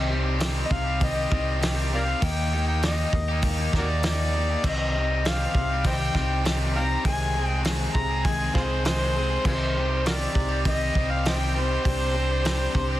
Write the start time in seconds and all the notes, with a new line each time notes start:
Already playing: C2 C3 D#3 G3 C4 D#4 G4
0.09 D#3 G3 C4 D#4 G4
0.25 G3 C4 G4
0.39 C3 D#3 G3 C4 D#4 G4, snare, open hi-hat
0.65 G4 D#5
0.70 C2 C4 D#4 F5, muted overdriven electric guitar stroke, kick
0.84 G3 C4 G4
1.00 C3 D#3 C4 D#4 G4, kick, open hi-hat
1.04 D#5
1.15 G3 C4 G4
1.30 C2 D#3 G3 C4 D#4 G4, kick
1.59 C3 D#3 G3 C4 D#4 G4, open hi-hat
1.63 snare
1.76 G3 C4 G4
1.90 D#3 G3 C4 D#4 G4
1.95 A#4 D5 F5
2.05 G3 C4 G4
2.19 D#2 D#3 A#3 D#4 G4, kick, open hi-hat
2.24 G5
2.51 D#3 A#3 D#4 G4
2.66 D#4 G4 G5
2.70 A#3
2.81 D#3 A#3 D#4 G4 D#5, snare, open hi-hat
3.13 D#2 A#3 D#4 G4, muted overdriven electric guitar stroke, kick
3.28 D#4 G4
3.33 A#3
3.42 D#3 A#3 D#4 G4, kick, open hi-hat
3.58 A#3 D#4 G4
3.72 D#2 D#3 A#3 D#4 G4, kick, snare
3.78 F#4 A#4 D5
4.03 D#3 A#3 D#4 G4, snare, open hi-hat
4.09 D5
4.19 A#3 D#4 G4
4.34 D#3 A#3 D#4 G4
4.49 A#3 D#4 G4
4.64 C2 C3 D#3 G3 C4 D#4 G4, kick, crash
4.68 D#5
4.94 D#3 G3 C4 D#4 G4
5.11 G3 C4 G4
5.24 C3 D#3 G3 C4 D#4 G4 F5, snare, open hi-hat
5.54 C2 C4 D#4 G4, muted overdriven electric guitar stroke, kick
5.70 G3 C4 G4
5.84 C3 D#3 C4 D#4 G4 C5 D#5 G5, kick, open hi-hat
6.00 G3 C4 G4
6.14 C2 D#3 G3 C4 D#4 G4, kick, snare
6.43 C3 D#3 G3 C4 G4, snare, open hi-hat
6.47 D#4
6.59 G3 C4 G4
6.72 D#3 G3 C4 G4 F5 G5 A#5
6.77 D#4
6.89 G3 C4 G4
7.03 C2 C3 D#3 G#3 C4 G#4 G#5, kick, open hi-hat
7.33 D#3 G#3 C4 G#4
7.39 G#3
7.45 G5
7.49 G#3 C4 G#4
7.62 C3 D#3 G#3 C4 G#4, snare, open hi-hat
7.94 C2 G#3 C4 G#4 A#5, muted overdriven electric guitar stroke, kick
8.09 G#3 C4 G#4
8.25 C3 D#3 G#3 C4 G#4 G#5, kick, open hi-hat
8.38 G#3 C4 G#4
8.53 C2 D#3 G#3 C4 F4 G#4 C5, kick, snare
8.84 C3 D#3 G#3 C4 G#4 C5, snare, open hi-hat
9.00 G#3 C4 G#4
9.14 D#3 G#3 C4 G#4
9.30 G#3 C4 G#4
9.44 C2 C3 D#3 G3 C4 D#4 F4 G4 G#4 C5, kick, crash
9.75 D#3 G3 C4 D#4 G4
9.88 C4 G4
9.93 G3
10.03 C3 D#3 G3 C4 D#4 F#4 G4 A#4 D5, snare, open hi-hat
10.34 C2 C4 D#4 G4, muted overdriven electric guitar stroke, kick
10.49 G3 C4 G4
10.65 C3 D#3 C4 D#4 G4 D#5, kick, open hi-hat
10.79 G3 C4 G4
10.95 C2 D#3 G3 C4 D#4 G4, kick
11.10 F5
11.24 C3 D#3 G3 C4 D#4 C5 D#5 G5, snare, open hi-hat
11.29 G4
11.39 G3 C4 G4
11.52 D#3 G3 C4 D#4 G4
11.59 C5
11.68 G3 C4 G4
11.83 C2 C3 G3 C4 D4 G4, kick, open hi-hat
12.12 G3 C4 D4 G4
12.17 C4
12.29 C4 D4 G4
12.42 C3 G3 C4 D4 G4, open hi-hat
12.46 snare
12.73 C2 D4 G4, muted overdriven electric guitar stroke, kick
12.78 C4
12.89 C4 D4 G4